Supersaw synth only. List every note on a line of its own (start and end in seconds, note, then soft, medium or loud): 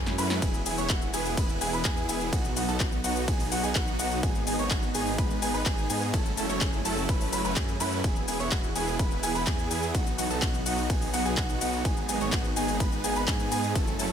0.00 0.12 F#3 medium
0.00 0.12 A3 medium
0.00 0.12 C#4 medium
0.00 0.12 E4 medium
0.00 0.12 G#4 medium
0.18 0.39 F#3 loud
0.18 0.39 A3 medium
0.18 0.39 C#4 medium
0.18 0.39 E4 medium
0.18 0.39 B4 loud
0.42 0.60 B3 medium
0.42 0.60 E4 medium
0.42 0.60 G#4 medium
0.66 0.75 B3 medium
0.66 0.75 E4 medium
0.66 0.75 G#4 medium
0.78 0.88 B3 medium
0.78 0.88 E4 medium
0.78 0.88 C#5 medium
0.90 1.07 B3 medium
0.90 1.07 E4 medium
0.90 1.07 F#4 medium
1.14 1.35 B3 loud
1.14 1.35 E4 medium
1.14 1.35 G#4 loud
1.37 1.58 B3 medium
1.37 1.58 E4 medium
1.37 1.58 B4 medium
1.61 1.71 B3 medium
1.61 1.71 E4 medium
1.61 1.71 G#4 loud
1.73 1.82 B3 loud
1.73 1.82 E4 medium
1.73 1.82 B4 loud
1.85 2.06 B3 loud
1.85 2.06 E4 medium
1.85 2.06 G#4 loud
2.09 2.30 B3 medium
2.09 2.30 E4 medium
2.09 2.30 G#4 loud
2.33 2.50 B3 medium
2.33 2.50 D#4 medium
2.33 2.50 F#4 medium
2.56 2.66 B3 medium
2.56 2.65 D#4 medium
2.56 2.65 F#4 medium
2.68 2.78 B3 medium
2.68 2.78 D#4 medium
2.68 2.78 A4 medium
2.80 2.98 B3 medium
2.80 2.98 D#4 medium
2.80 2.98 F#4 medium
3.04 3.25 B3 loud
3.04 3.25 D#4 medium
3.04 3.25 F#4 loud
3.28 3.49 B3 medium
3.28 3.49 D#4 medium
3.28 3.49 G#4 medium
3.52 3.62 B3 loud
3.52 3.62 D#4 medium
3.52 3.62 F#4 loud
3.63 3.73 B3 medium
3.63 3.73 D#4 medium
3.63 3.73 G#4 loud
3.75 3.96 B3 loud
3.75 3.96 D#4 medium
3.75 3.96 F#4 loud
3.99 4.20 B3 medium
3.99 4.20 D#4 medium
3.99 4.20 F#4 loud
4.23 4.41 B3 medium
4.23 4.41 D#4 medium
4.23 4.40 G#4 medium
4.47 4.56 B3 medium
4.47 4.56 D#4 medium
4.47 4.56 G#4 medium
4.59 4.69 B3 medium
4.59 4.69 D#4 medium
4.59 4.69 C#5 medium
4.71 4.88 B3 medium
4.71 4.88 D#4 medium
4.71 4.88 F#4 medium
4.95 5.16 B3 loud
4.95 5.16 D#4 medium
4.95 5.16 G#4 loud
5.18 5.39 B3 medium
5.18 5.39 D#4 medium
5.18 5.39 B4 medium
5.42 5.52 B3 loud
5.42 5.52 D#4 medium
5.42 5.52 G#4 loud
5.54 5.63 B3 medium
5.54 5.63 D#4 medium
5.54 5.63 B4 loud
5.66 5.87 B3 loud
5.66 5.87 D#4 loud
5.66 5.87 G#4 loud
5.90 6.11 B3 medium
5.90 6.11 D#4 medium
5.90 6.11 G#4 loud
6.14 6.31 F#3 medium
6.14 6.31 A3 medium
6.14 6.31 C#4 medium
6.14 6.31 E4 medium
6.14 6.31 A4 medium
6.37 6.46 F#3 medium
6.37 6.46 A3 medium
6.37 6.46 C#4 medium
6.37 6.46 E4 medium
6.37 6.46 A4 medium
6.49 6.59 F#3 medium
6.49 6.59 A3 medium
6.49 6.59 C#4 medium
6.49 6.59 E4 medium
6.49 6.59 C#5 medium
6.61 6.79 F#3 medium
6.61 6.79 A3 medium
6.61 6.79 C#4 medium
6.61 6.79 E4 medium
6.61 6.79 G#4 medium
6.85 7.06 F#3 loud
6.85 7.06 A3 medium
6.85 7.06 C#4 medium
6.85 7.06 E4 medium
6.85 7.06 A4 loud
7.09 7.30 F#3 medium
7.09 7.30 A3 medium
7.09 7.30 C#4 medium
7.09 7.30 E4 medium
7.09 7.30 B4 loud
7.33 7.42 F#3 medium
7.33 7.42 A3 medium
7.33 7.42 C#4 medium
7.33 7.42 E4 medium
7.33 7.42 B4 medium
7.45 7.55 F#3 loud
7.45 7.55 A3 medium
7.45 7.55 C#4 medium
7.45 7.55 E4 medium
7.45 7.55 B4 loud
7.56 7.74 F#3 medium
7.56 7.74 A3 medium
7.56 7.74 C#4 medium
7.56 7.74 E4 medium
7.56 7.74 G#4 medium
7.80 8.01 F#3 loud
7.80 8.01 A3 medium
7.80 8.01 C#4 medium
7.80 8.01 E4 loud
7.80 8.01 B4 loud
8.04 8.21 B3 medium
8.04 8.21 E4 medium
8.04 8.21 G#4 medium
8.28 8.37 B3 medium
8.28 8.37 E4 medium
8.28 8.37 G#4 medium
8.40 8.50 B3 medium
8.40 8.50 E4 medium
8.40 8.50 C#5 medium
8.52 8.69 B3 medium
8.52 8.69 E4 medium
8.52 8.69 F#4 medium
8.76 8.96 B3 loud
8.76 8.96 E4 medium
8.76 8.96 G#4 loud
8.99 9.20 B3 medium
8.99 9.20 E4 medium
8.99 9.20 B4 medium
9.23 9.33 B3 loud
9.23 9.33 E4 medium
9.23 9.33 G#4 loud
9.35 9.44 B3 medium
9.35 9.44 E4 medium
9.35 9.44 B4 loud
9.47 9.68 B3 loud
9.47 9.68 E4 medium
9.47 9.68 G#4 loud
9.71 9.92 B3 medium
9.71 9.92 E4 medium
9.71 9.92 G#4 loud
9.95 10.12 B3 medium
9.95 10.12 D#4 medium
9.95 10.12 F#4 medium
10.18 10.27 B3 medium
10.18 10.27 D#4 medium
10.18 10.27 F#4 medium
10.30 10.40 B3 medium
10.30 10.40 D#4 medium
10.30 10.40 A4 medium
10.42 10.60 B3 medium
10.42 10.60 D#4 medium
10.42 10.60 F#4 medium
10.66 10.87 B3 loud
10.66 10.87 D#4 medium
10.66 10.87 F#4 loud
10.90 11.11 B3 medium
10.90 11.11 D#4 medium
10.90 11.11 G#4 medium
11.14 11.24 B3 medium
11.14 11.24 D#4 medium
11.14 11.24 F#4 loud
11.25 11.35 B3 medium
11.25 11.35 D#4 medium
11.25 11.34 G#4 loud
11.37 11.58 B3 loud
11.37 11.58 D#4 medium
11.37 11.58 F#4 loud
11.61 11.82 B3 loud
11.61 11.82 D#4 medium
11.61 11.82 F#4 loud
11.85 12.02 B3 medium
11.85 12.02 D#4 medium
11.85 12.02 G#4 medium
12.09 12.18 B3 medium
12.09 12.18 D#4 medium
12.09 12.18 G#4 medium
12.21 12.31 B3 medium
12.21 12.31 D#4 medium
12.21 12.31 C#5 medium
12.33 12.50 B3 medium
12.33 12.50 D#4 medium
12.33 12.50 F#4 medium
12.56 12.77 B3 loud
12.56 12.77 D#4 loud
12.56 12.77 G#4 loud
12.80 13.01 B3 medium
12.80 13.01 D#4 medium
12.80 13.01 B4 medium
13.04 13.14 B3 loud
13.04 13.14 D#4 medium
13.04 13.14 G#4 loud
13.16 13.25 B3 loud
13.16 13.25 D#4 medium
13.16 13.25 B4 loud
13.28 13.49 B3 loud
13.28 13.49 D#4 loud
13.28 13.49 G#4 loud
13.52 13.73 B3 medium
13.52 13.73 D#4 medium
13.52 13.73 G#4 loud
13.75 13.93 F#3 medium
13.75 13.93 A3 medium
13.75 13.93 C#4 medium
13.75 13.93 E4 medium
13.75 13.93 A4 medium
13.99 14.08 F#3 medium
13.99 14.08 A3 medium
13.99 14.08 C#4 medium
13.99 14.08 E4 medium
13.99 14.08 A4 medium